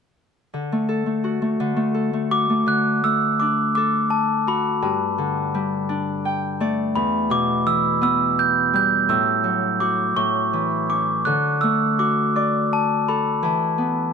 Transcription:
0.54 D3
0.72 A3
0.89 A4
1.06 A3
1.24 F#4
1.42 A3
1.60 D3
1.76 A3
1.94 A4
2.13 A3
2.31 F#4 D6
2.50 A3
2.66 D3 F#6
3.04 A3 E6
3.40 D4 D6
3.75 A4 D6
4.10 A5
4.47 F#4 B5
4.82 G2 A5
5.18 D3
5.54 G3
5.89 D4
6.25 G5
6.60 A3 D5
6.96 E2 B5
7.30 B2 D6
7.66 E3 E6
8.01 B3 E6
8.39 G6
8.73 G3 G6
9.09 A2 E6
9.44 F#3
9.80 F#4 D6
10.16 A2 C#6
10.53 E3
10.89 C#4 D6
11.25 D3 F#6
11.61 A3 E6
11.99 F#4 D6
12.36 D5 D6
12.73 A5
13.08 A4 B5
13.43 E3 A5
13.78 B3

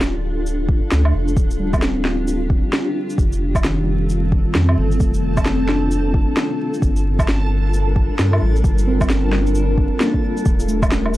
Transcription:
Already playing: D1 D4 F4 A4
0.01 snare, shaker
0.47 shaker
0.69 kick
0.92 D2, snare, shaker
1.05 low woodblock
1.14 F1
1.28 shaker
1.37 D1 G4, kick, shaker
1.51 shaker
1.59 G3
1.73 kick, low woodblock, shaker
1.78 C4
1.82 snare, shaker
2.05 snare
2.28 shaker
2.50 kick
2.73 snare, shaker
3.10 shaker
3.18 F1 C4 A4 A5, kick, shaker
3.33 shaker
3.55 kick, low woodblock, shaker
3.64 D#3, snare, shaker
3.83 G3
4.09 shaker
4.32 kick
4.55 F2, snare, shaker
4.69 low woodblock
4.77 G1
4.92 shaker
5.00 F1 A3, kick, shaker
5.14 shaker
5.37 kick, low woodblock, shaker
5.46 snare, shaker
5.68 D4, snare
5.91 shaker
6.14 kick
6.37 snare, shaker
6.74 shaker
6.82 G1 G3 D4 F4 A4 A#4, kick, shaker
6.96 shaker
7.19 kick, low woodblock, shaker
7.28 snare, shaker
7.74 shaker
7.96 kick
8.19 G2, snare, shaker
8.33 low woodblock
8.41 A1
8.56 shaker
8.64 G1, kick, shaker
8.78 shaker
8.87 C4
9.01 kick, low woodblock, shaker
9.10 snare, shaker
9.33 snare
9.47 shaker
9.55 shaker
9.78 kick
10.00 A#3, snare, shaker
10.14 kick
10.37 shaker
10.45 D#1 D4 G4, kick, shaker
10.60 shaker
10.68 A3, cabasa
10.82 kick, low woodblock, shaker
10.92 snare, shaker
11.05 low woodblock

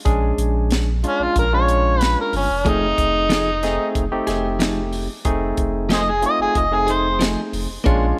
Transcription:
0.05 A#1 G#3 C#4 D4 G#4, kick, closed hi-hat
0.38 A#1, closed hi-hat
0.71 snare, closed hi-hat
1.03 G#3 C#4 D4 F4, closed hi-hat
1.19 A#1 F4
1.36 A#1 A#4, kick, closed hi-hat
1.53 G#3 C#4 D4 F4 C#5
1.69 closed hi-hat
2.01 B4, snare, closed hi-hat
2.21 A#4
2.33 G1 C#4, open hi-hat
2.50 F1
2.65 F1 F3 A3 C4 D#4 G#4, kick, closed hi-hat
2.98 F1, kick, closed hi-hat
3.29 F3 A3 D#4 G#4, snare, closed hi-hat
3.63 A3 C4 D#4 G#4, snare, closed hi-hat
3.95 F1, kick, closed hi-hat
4.11 F1 A3 C4 D#4 G4
4.27 F1 A3 D#4 G#4, snare, closed hi-hat
4.59 F3 A3 D#4 G#4, snare, closed hi-hat
4.93 open hi-hat
5.25 F1 A3 C4 D#4 G#4, kick, closed hi-hat
5.57 F1, kick, closed hi-hat
5.89 F3 A3 D#4 G#4, snare, closed hi-hat
5.94 G#4 C5 D#5
6.10 G#4
6.22 A3 C4 D#4 F4, closed hi-hat
6.26 D#5
6.39 F1 G#4
6.55 F1 D#5, kick, closed hi-hat
6.72 A3 C4 D#4 G#4
6.87 A3 D#4 G#4, closed hi-hat
6.91 C5
7.19 F3 A3 D#4 G#4, snare, closed hi-hat
7.53 F1, open hi-hat
7.69 F1
7.84 A#1 G#3 A#3 C#4 D4 F4 G#4 C#5, kick, closed hi-hat

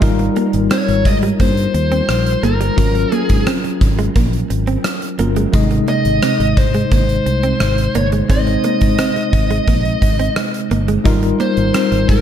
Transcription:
0.01 G#1 G3 D#4 F4 A#4, kick, closed hi-hat
0.19 muted clean electric guitar stroke, closed hi-hat
0.36 A#3, closed hi-hat
0.53 G#1, closed hi-hat
0.71 C4 C#5, cross-stick, closed hi-hat
0.88 G#1, muted clean electric guitar stroke, closed hi-hat
1.05 G#2 D#5, kick, closed hi-hat
1.22 G3, closed hi-hat
1.40 G2 A#3 C5, kick, closed hi-hat
1.57 closed hi-hat
1.74 D#2, muted clean electric guitar stroke, closed hi-hat
1.92 C4, closed hi-hat
2.09 A#1, muted clean electric guitar stroke, cross-stick, closed hi-hat
2.27 closed hi-hat
2.43 G1 A#3 A#4, closed hi-hat
2.61 G3, closed hi-hat
2.77 G#1 F#3 C#4 F4 A#4, kick, closed hi-hat
2.95 muted clean electric guitar stroke, closed hi-hat
3.12 A#3 G#4, closed hi-hat
3.29 G#2, kick, closed hi-hat
3.47 C4, cross-stick, closed hi-hat
3.64 muted clean electric guitar stroke, closed hi-hat
3.81 G#1, kick, closed hi-hat
3.98 G#3, closed hi-hat
4.16 A#1 A#3, kick, closed hi-hat
4.33 closed hi-hat
4.50 G#1, muted clean electric guitar stroke, closed hi-hat
4.67 C4, closed hi-hat
4.84 muted clean electric guitar stroke, cross-stick, closed hi-hat
5.02 closed hi-hat
5.19 G1 F#3 A#3 C#4 F4 A#4, closed hi-hat
5.36 G#3, closed hi-hat
5.53 G#1 C3 G#3 D#4 D#5, kick, closed hi-hat
5.71 muted clean electric guitar stroke, closed hi-hat
5.88 A#3 D#5, closed hi-hat
6.05 G#1, closed hi-hat
6.22 C4, cross-stick, closed hi-hat
6.40 G#1, muted clean electric guitar stroke, closed hi-hat
6.57 G#2 C5, kick, closed hi-hat
6.74 G#3, closed hi-hat
6.91 G#1 A#3 C5, kick, closed hi-hat
7.09 closed hi-hat
7.26 C2, muted clean electric guitar stroke, closed hi-hat
7.43 C4, closed hi-hat
7.60 G#1, muted clean electric guitar stroke, cross-stick, closed hi-hat
7.78 closed hi-hat
7.95 G1 A#3 C#5, closed hi-hat
8.12 G#3, closed hi-hat
8.29 G#1 G#3 C4 D#4 C5 D#5, kick, closed hi-hat
8.47 muted clean electric guitar stroke, closed hi-hat
8.64 A#3, closed hi-hat
8.81 G#2, kick, closed hi-hat
8.98 C4, cross-stick, closed hi-hat
9.16 muted clean electric guitar stroke, closed hi-hat
9.33 G#1, kick, closed hi-hat
9.50 G#3, closed hi-hat
9.67 A#1 A#3, kick, closed hi-hat
9.85 closed hi-hat
10.02 G#1, muted clean electric guitar stroke, kick, closed hi-hat
10.19 C4, closed hi-hat
10.36 muted clean electric guitar stroke, cross-stick, closed hi-hat
10.54 closed hi-hat
10.71 G1 A#3, closed hi-hat
10.88 G#3, closed hi-hat
11.04 G#1 G3 D#4 F4 A#4, kick, closed hi-hat
11.23 muted clean electric guitar stroke, closed hi-hat
11.40 A#3 C5, closed hi-hat
11.57 G#1, closed hi-hat
11.74 C4, cross-stick, closed hi-hat
11.92 G#1, muted clean electric guitar stroke, closed hi-hat
12.09 G#2 A#4, kick, closed hi-hat

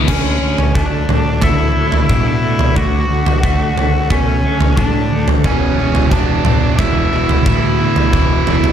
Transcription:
0.08 D2 D3 C#4 C#5, kick, floor tom, crash
0.42 D2
0.58 floor tom
0.75 D2 A3 D4 D5, kick
1.09 D2 D4, floor tom, mid tom
1.41 D2 A3 E4 E5, kick, floor tom
1.76 D2 F#3
1.92 floor tom
2.09 B2 D4, kick, mid tom
2.43 A3
2.59 floor tom
2.76 D2 D3 F#4 F#5, kick, floor tom
3.09 D2
3.26 floor tom
3.43 D2 A3, kick
3.77 floor tom
4.10 B2 A3 C#4 C#5, kick, floor tom
4.43 D2 F#3
4.61 floor tom
4.77 A2 D4 D5, kick, mid tom
5.11 D2 A3
5.28 floor tom
5.44 E1 E2 B2 E3 C#4 C#5, kick, floor tom
5.78 E1 E2 B2 E3
5.95 floor tom
6.11 E1 E2 B2 E3 D4 D5, kick
6.45 E1 E2 B2 E3, floor tom, mid tom
6.78 E1 E2 B2 E3 E4 E5, kick, floor tom
7.12 E1 E2 B2 E3
7.29 floor tom
7.46 D2 E2 B2 E3, kick, mid tom
7.79 E2 B2 E3
7.96 floor tom
8.13 E1 E2 B2 E3, kick, floor tom
8.47 E1 E2 B2 E3, floor tom
8.64 floor tom

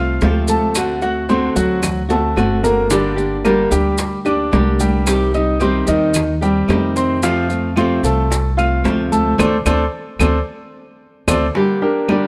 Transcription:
Already playing: C2 A3 C4 F4 F5 F6
0.21 D2 C3 F3 A3 C4 F4, high bongo, low bongo, high conga, maracas
0.48 A3 A4 A5, high conga, maracas
0.75 D3 A3 C4 F#4, high bongo, high conga, claves, maracas
1.02 A3 C4 F#4 F#5 F#6, high bongo, high conga, maracas
1.29 D3 A3 C4 F#4 C5 C6, high bongo, high conga, maracas
1.56 D2 F#3 A3 C4 F#4 F#5, high bongo, maracas
1.82 muted nylon-string guitar stroke, high bongo, high conga, low conga, claves, maracas
2.09 A3 C4 F#4 A4 A5, high bongo, high conga, maracas
2.36 G1 D3 A3 C4 F#4, high bongo, high conga, claves, maracas
2.63 A#3 A#4 A#5, low bongo, high conga, maracas
2.90 D3 G3 A#3 D4 G4 D5, high bongo, high conga, maracas
3.16 A#3 D4 G4, high conga, maracas
3.44 D3 G3 A#3 D4 G4 A#4 A#5, high bongo, high conga, claves, maracas
3.71 D2 G3 A#3 D4 G4 G5, high conga, maracas
3.98 muted nylon-string guitar stroke, high bongo, high conga, maracas
4.25 A#3 D4 G4 D5 D6, high conga, claves, maracas
4.51 C2 D3 G3 A#3 D4 G4, high bongo, low bongo, high conga, maracas
4.80 G3 G4 G5, high conga, maracas
5.06 C3 D#3 G3 C4 G4, high bongo, high conga, claves, maracas
5.34 G3 C4 D#4 G4 D#5 D#6, high bongo, high conga, maracas
5.59 C3 D#3 G3 C4 G4 C5 C6, high bongo, high conga, maracas
5.86 D#2 D#3 G3 C4 D#4 G4 D#5, high bongo, high conga, maracas
6.14 muted nylon-string guitar stroke, high bongo, high conga, low conga, claves, maracas
6.41 G3 C4 G4 G5, high bongo, high conga, maracas
6.68 F2 C3 D#3 G3 C4 G4, high bongo, low bongo, high conga, claves, maracas
6.96 C4 C5 C6, maracas
7.22 C3 F3 A3 C4 F4 F5, high bongo, high conga, maracas
7.49 A3 C4 F4, high conga, maracas
7.76 C3 F3 A3 C4 F4 C5 C6, high bongo, high conga, claves, maracas
8.03 C2 A3 C4 F4 A4 A5, high conga, maracas
8.30 muted nylon-string guitar stroke, high bongo, high conga, maracas
8.57 A3 C4 F4 F5 F6, high conga, claves, maracas
8.84 D2 C3 F3 A3 C4 F4, high bongo, low bongo, high conga, maracas
9.12 A3 A4 A5, high conga, maracas
9.38 D2 A3 C4 D4 A4 C5 D5, high bongo, low conga, claves, maracas
9.66 D2 A3 C4 D4 A4 C5 D5, high bongo, low conga, claves, maracas
10.19 D2 A3 C4 D4 A4 C5 D5, high bongo, low conga, claves, maracas
11.27 D2 A3 C4 D4 A4 C5 D5, high bongo, low conga, claves, maracas
11.54 D3 G3 A#3 D4 G4, high bongo, high conga
11.82 A#3 D4 G4 A#4, high conga
12.08 D3 G3 A#3 D4 G4 A#4 D5, high bongo, high conga, claves

